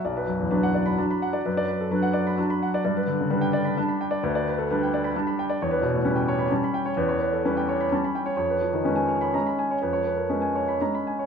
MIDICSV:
0, 0, Header, 1, 2, 480
1, 0, Start_track
1, 0, Tempo, 465839
1, 44, Time_signature, 3, 2, 24, 8
1, 4366, Tempo, 455927
1, 7246, Tempo, 474308
1, 10606, Tempo, 514139
1, 11510, End_track
2, 0, Start_track
2, 0, Title_t, "Grand piano"
2, 0, Program_c, 0, 0
2, 48, Note_on_c, 0, 74, 43
2, 53, Note_on_c, 0, 35, 50
2, 174, Note_on_c, 0, 71, 53
2, 235, Note_off_c, 0, 74, 0
2, 242, Control_c, 0, 64, 127
2, 284, Note_on_c, 0, 42, 44
2, 360, Note_off_c, 0, 71, 0
2, 413, Note_on_c, 0, 40, 41
2, 475, Note_off_c, 0, 42, 0
2, 512, Note_off_c, 0, 35, 0
2, 522, Note_on_c, 0, 62, 47
2, 524, Note_on_c, 0, 71, 51
2, 525, Note_on_c, 0, 54, 46
2, 528, Note_off_c, 0, 40, 0
2, 652, Note_on_c, 0, 78, 56
2, 715, Note_off_c, 0, 71, 0
2, 766, Note_on_c, 0, 74, 46
2, 839, Note_off_c, 0, 78, 0
2, 884, Note_on_c, 0, 83, 52
2, 958, Note_off_c, 0, 74, 0
2, 964, Note_off_c, 0, 62, 0
2, 966, Note_off_c, 0, 54, 0
2, 1007, Note_on_c, 0, 54, 42
2, 1011, Note_on_c, 0, 81, 39
2, 1015, Control_c, 0, 64, 0
2, 1015, Note_on_c, 0, 62, 43
2, 1079, Note_off_c, 0, 83, 0
2, 1130, Note_off_c, 0, 81, 0
2, 1139, Note_on_c, 0, 83, 50
2, 1260, Note_on_c, 0, 78, 56
2, 1325, Note_off_c, 0, 83, 0
2, 1372, Note_on_c, 0, 74, 51
2, 1443, Note_off_c, 0, 78, 0
2, 1444, Note_off_c, 0, 54, 0
2, 1448, Note_off_c, 0, 62, 0
2, 1499, Note_on_c, 0, 71, 49
2, 1501, Note_on_c, 0, 42, 51
2, 1557, Note_off_c, 0, 74, 0
2, 1622, Note_on_c, 0, 74, 58
2, 1656, Control_c, 0, 64, 127
2, 1680, Note_off_c, 0, 71, 0
2, 1733, Note_on_c, 0, 71, 49
2, 1802, Note_off_c, 0, 74, 0
2, 1863, Note_on_c, 0, 69, 45
2, 1917, Note_off_c, 0, 71, 0
2, 1953, Note_off_c, 0, 42, 0
2, 1970, Note_off_c, 0, 69, 0
2, 1970, Note_on_c, 0, 71, 54
2, 1971, Note_on_c, 0, 54, 49
2, 1975, Note_on_c, 0, 62, 48
2, 2086, Note_on_c, 0, 78, 55
2, 2156, Note_off_c, 0, 71, 0
2, 2199, Note_on_c, 0, 74, 55
2, 2275, Note_off_c, 0, 78, 0
2, 2337, Note_on_c, 0, 83, 53
2, 2394, Note_off_c, 0, 74, 0
2, 2409, Note_off_c, 0, 54, 0
2, 2411, Note_off_c, 0, 62, 0
2, 2450, Note_on_c, 0, 81, 44
2, 2451, Note_on_c, 0, 54, 45
2, 2456, Note_on_c, 0, 62, 47
2, 2458, Control_c, 0, 64, 0
2, 2527, Note_off_c, 0, 83, 0
2, 2571, Note_off_c, 0, 81, 0
2, 2577, Note_on_c, 0, 83, 54
2, 2706, Note_on_c, 0, 78, 52
2, 2767, Note_off_c, 0, 83, 0
2, 2826, Note_on_c, 0, 74, 58
2, 2888, Note_off_c, 0, 78, 0
2, 2889, Note_off_c, 0, 54, 0
2, 2892, Note_off_c, 0, 62, 0
2, 2918, Note_off_c, 0, 74, 0
2, 2933, Note_on_c, 0, 74, 51
2, 2934, Note_on_c, 0, 43, 57
2, 3058, Note_on_c, 0, 71, 58
2, 3115, Note_off_c, 0, 74, 0
2, 3129, Control_c, 0, 64, 127
2, 3168, Note_on_c, 0, 50, 51
2, 3236, Note_off_c, 0, 71, 0
2, 3303, Note_on_c, 0, 49, 44
2, 3351, Note_off_c, 0, 50, 0
2, 3383, Note_off_c, 0, 43, 0
2, 3403, Note_on_c, 0, 71, 55
2, 3404, Note_on_c, 0, 55, 52
2, 3407, Note_on_c, 0, 62, 47
2, 3408, Note_off_c, 0, 49, 0
2, 3517, Note_on_c, 0, 79, 58
2, 3591, Note_off_c, 0, 71, 0
2, 3640, Note_on_c, 0, 74, 59
2, 3710, Note_off_c, 0, 79, 0
2, 3760, Note_on_c, 0, 83, 51
2, 3835, Note_off_c, 0, 74, 0
2, 3847, Note_off_c, 0, 55, 0
2, 3849, Note_off_c, 0, 62, 0
2, 3886, Note_on_c, 0, 55, 44
2, 3890, Note_on_c, 0, 62, 47
2, 3890, Note_on_c, 0, 81, 49
2, 3899, Control_c, 0, 64, 0
2, 3959, Note_off_c, 0, 83, 0
2, 4003, Note_on_c, 0, 83, 50
2, 4011, Note_off_c, 0, 81, 0
2, 4131, Note_on_c, 0, 79, 57
2, 4200, Note_off_c, 0, 83, 0
2, 4234, Note_on_c, 0, 74, 58
2, 4320, Note_off_c, 0, 79, 0
2, 4326, Note_off_c, 0, 55, 0
2, 4327, Note_off_c, 0, 62, 0
2, 4361, Note_on_c, 0, 38, 61
2, 4361, Note_on_c, 0, 71, 46
2, 4427, Note_off_c, 0, 74, 0
2, 4486, Note_on_c, 0, 74, 53
2, 4551, Note_off_c, 0, 71, 0
2, 4587, Control_c, 0, 64, 127
2, 4621, Note_on_c, 0, 71, 51
2, 4674, Note_off_c, 0, 74, 0
2, 4732, Note_on_c, 0, 69, 44
2, 4802, Note_off_c, 0, 71, 0
2, 4824, Note_off_c, 0, 38, 0
2, 4846, Note_off_c, 0, 69, 0
2, 4862, Note_on_c, 0, 71, 57
2, 4863, Note_on_c, 0, 55, 48
2, 4869, Note_on_c, 0, 62, 51
2, 4991, Note_on_c, 0, 79, 51
2, 5044, Note_off_c, 0, 71, 0
2, 5104, Note_on_c, 0, 74, 50
2, 5167, Note_off_c, 0, 79, 0
2, 5213, Note_on_c, 0, 83, 55
2, 5284, Note_off_c, 0, 74, 0
2, 5290, Note_off_c, 0, 55, 0
2, 5293, Note_off_c, 0, 62, 0
2, 5328, Control_c, 0, 64, 0
2, 5337, Note_on_c, 0, 81, 45
2, 5338, Note_on_c, 0, 55, 49
2, 5340, Note_on_c, 0, 62, 51
2, 5400, Note_off_c, 0, 83, 0
2, 5450, Note_off_c, 0, 81, 0
2, 5451, Note_on_c, 0, 83, 51
2, 5581, Note_on_c, 0, 79, 57
2, 5638, Note_off_c, 0, 83, 0
2, 5691, Note_on_c, 0, 74, 51
2, 5759, Note_off_c, 0, 79, 0
2, 5762, Note_off_c, 0, 55, 0
2, 5763, Note_off_c, 0, 62, 0
2, 5801, Note_off_c, 0, 74, 0
2, 5823, Note_on_c, 0, 40, 55
2, 5824, Note_on_c, 0, 73, 49
2, 5919, Note_on_c, 0, 71, 58
2, 5993, Note_off_c, 0, 73, 0
2, 6009, Control_c, 0, 64, 127
2, 6032, Note_on_c, 0, 47, 54
2, 6100, Note_off_c, 0, 71, 0
2, 6159, Note_on_c, 0, 45, 45
2, 6217, Note_off_c, 0, 47, 0
2, 6262, Note_off_c, 0, 40, 0
2, 6271, Note_off_c, 0, 45, 0
2, 6272, Note_on_c, 0, 71, 52
2, 6274, Note_on_c, 0, 61, 51
2, 6275, Note_on_c, 0, 55, 49
2, 6387, Note_on_c, 0, 79, 51
2, 6463, Note_off_c, 0, 71, 0
2, 6520, Note_on_c, 0, 73, 58
2, 6583, Note_off_c, 0, 79, 0
2, 6634, Note_on_c, 0, 83, 48
2, 6712, Note_off_c, 0, 73, 0
2, 6719, Note_off_c, 0, 61, 0
2, 6720, Note_off_c, 0, 55, 0
2, 6757, Note_on_c, 0, 81, 45
2, 6763, Note_on_c, 0, 55, 46
2, 6763, Note_on_c, 0, 61, 45
2, 6765, Control_c, 0, 64, 0
2, 6832, Note_off_c, 0, 83, 0
2, 6880, Note_off_c, 0, 81, 0
2, 6894, Note_on_c, 0, 83, 53
2, 7002, Note_on_c, 0, 79, 53
2, 7081, Note_off_c, 0, 83, 0
2, 7122, Note_on_c, 0, 73, 52
2, 7197, Note_off_c, 0, 79, 0
2, 7207, Note_off_c, 0, 55, 0
2, 7207, Note_off_c, 0, 61, 0
2, 7244, Note_on_c, 0, 40, 58
2, 7244, Note_on_c, 0, 71, 49
2, 7316, Note_off_c, 0, 73, 0
2, 7361, Note_on_c, 0, 73, 48
2, 7436, Note_off_c, 0, 71, 0
2, 7436, Control_c, 0, 64, 127
2, 7477, Note_on_c, 0, 71, 51
2, 7557, Note_off_c, 0, 73, 0
2, 7607, Note_on_c, 0, 69, 42
2, 7676, Note_off_c, 0, 71, 0
2, 7714, Note_off_c, 0, 40, 0
2, 7729, Note_off_c, 0, 69, 0
2, 7732, Note_on_c, 0, 61, 46
2, 7733, Note_on_c, 0, 55, 45
2, 7737, Note_on_c, 0, 71, 53
2, 7851, Note_on_c, 0, 79, 56
2, 7925, Note_off_c, 0, 71, 0
2, 7969, Note_on_c, 0, 73, 50
2, 8040, Note_off_c, 0, 79, 0
2, 8088, Note_on_c, 0, 83, 51
2, 8159, Note_off_c, 0, 73, 0
2, 8167, Note_off_c, 0, 61, 0
2, 8168, Note_off_c, 0, 55, 0
2, 8207, Note_on_c, 0, 55, 46
2, 8208, Note_on_c, 0, 61, 43
2, 8209, Note_on_c, 0, 81, 42
2, 8214, Control_c, 0, 64, 0
2, 8279, Note_off_c, 0, 83, 0
2, 8327, Note_off_c, 0, 81, 0
2, 8329, Note_on_c, 0, 83, 50
2, 8440, Note_on_c, 0, 79, 51
2, 8516, Note_off_c, 0, 83, 0
2, 8547, Note_on_c, 0, 73, 52
2, 8629, Note_off_c, 0, 79, 0
2, 8636, Note_off_c, 0, 55, 0
2, 8637, Note_off_c, 0, 61, 0
2, 8645, Note_off_c, 0, 73, 0
2, 8660, Note_on_c, 0, 73, 48
2, 8663, Note_on_c, 0, 41, 50
2, 8787, Note_on_c, 0, 71, 48
2, 8849, Control_c, 0, 64, 127
2, 8857, Note_off_c, 0, 73, 0
2, 8910, Note_on_c, 0, 53, 48
2, 8983, Note_off_c, 0, 71, 0
2, 9027, Note_on_c, 0, 51, 45
2, 9107, Note_off_c, 0, 53, 0
2, 9136, Note_off_c, 0, 41, 0
2, 9137, Note_on_c, 0, 56, 42
2, 9145, Note_on_c, 0, 71, 46
2, 9147, Note_on_c, 0, 61, 46
2, 9154, Note_off_c, 0, 51, 0
2, 9255, Note_on_c, 0, 80, 49
2, 9348, Note_off_c, 0, 71, 0
2, 9379, Note_on_c, 0, 73, 44
2, 9465, Note_off_c, 0, 80, 0
2, 9512, Note_on_c, 0, 83, 51
2, 9589, Note_off_c, 0, 73, 0
2, 9600, Note_off_c, 0, 56, 0
2, 9605, Note_off_c, 0, 61, 0
2, 9641, Note_on_c, 0, 82, 43
2, 9642, Note_on_c, 0, 56, 40
2, 9643, Note_on_c, 0, 61, 44
2, 9665, Control_c, 0, 64, 0
2, 9717, Note_off_c, 0, 83, 0
2, 9768, Note_off_c, 0, 82, 0
2, 9768, Note_on_c, 0, 83, 47
2, 9894, Note_on_c, 0, 80, 45
2, 9961, Note_off_c, 0, 83, 0
2, 10015, Note_on_c, 0, 73, 41
2, 10080, Note_off_c, 0, 80, 0
2, 10081, Note_off_c, 0, 56, 0
2, 10081, Note_off_c, 0, 61, 0
2, 10126, Note_on_c, 0, 71, 42
2, 10131, Note_on_c, 0, 41, 50
2, 10197, Note_off_c, 0, 73, 0
2, 10239, Note_on_c, 0, 73, 50
2, 10312, Note_off_c, 0, 71, 0
2, 10317, Control_c, 0, 64, 127
2, 10362, Note_on_c, 0, 71, 46
2, 10431, Note_off_c, 0, 73, 0
2, 10479, Note_on_c, 0, 70, 35
2, 10556, Note_off_c, 0, 71, 0
2, 10593, Note_off_c, 0, 41, 0
2, 10604, Note_off_c, 0, 70, 0
2, 10607, Note_on_c, 0, 56, 41
2, 10607, Note_on_c, 0, 71, 40
2, 10609, Note_on_c, 0, 61, 42
2, 10723, Note_on_c, 0, 80, 45
2, 10793, Note_off_c, 0, 71, 0
2, 10850, Note_on_c, 0, 73, 43
2, 10912, Note_off_c, 0, 80, 0
2, 10969, Note_on_c, 0, 83, 42
2, 11038, Note_off_c, 0, 73, 0
2, 11046, Note_off_c, 0, 56, 0
2, 11046, Note_off_c, 0, 61, 0
2, 11090, Note_on_c, 0, 56, 39
2, 11091, Note_on_c, 0, 82, 37
2, 11092, Note_on_c, 0, 61, 40
2, 11094, Control_c, 0, 64, 0
2, 11160, Note_off_c, 0, 83, 0
2, 11208, Note_off_c, 0, 82, 0
2, 11215, Note_on_c, 0, 83, 45
2, 11333, Note_on_c, 0, 80, 41
2, 11403, Note_off_c, 0, 83, 0
2, 11445, Note_on_c, 0, 73, 39
2, 11510, Note_off_c, 0, 56, 0
2, 11510, Note_off_c, 0, 61, 0
2, 11510, Note_off_c, 0, 73, 0
2, 11510, Note_off_c, 0, 80, 0
2, 11510, End_track
0, 0, End_of_file